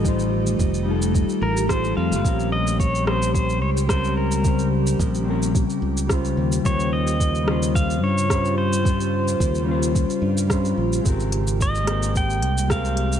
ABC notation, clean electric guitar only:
X:1
M:4/4
L:1/8
Q:1/4=109
K:Bbdor
V:1 name="Clean electric guitar"
[G,EFc]3 [G,EF=A]3 [G,EFA]2 | [G,CDB]3 [G,CDB]3 [G,CDB]2 | [G,CDc]3 [G,CDB]3 [G,DFc]2 | [G,DFc]3 [G,DFc]3 [G,DFc]2 |
[G,DFc]3 [G,DFc]3 [G,DFc]2 | [A,CGB]3 [A,CGB]3 [A,CGB]2 |]